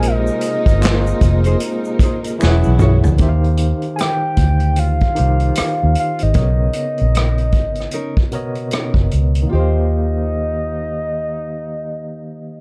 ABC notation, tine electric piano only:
X:1
M:4/4
L:1/16
Q:"Swing 16ths" 1/4=76
K:Eb
V:1 name="Tine electric piano"
[B,FAce]3 z [B,FAce]6 z2 [=E,=E^G^c^f]4 | [E,EGc_f=f]6 z4 [E,EGcf]4- [E,EGcf] z | [^C,=B,^A^c^d]6 z4 [=B,,B,Acd]4- [B,,B,Acd] z | [E,B,Gcf]16 |]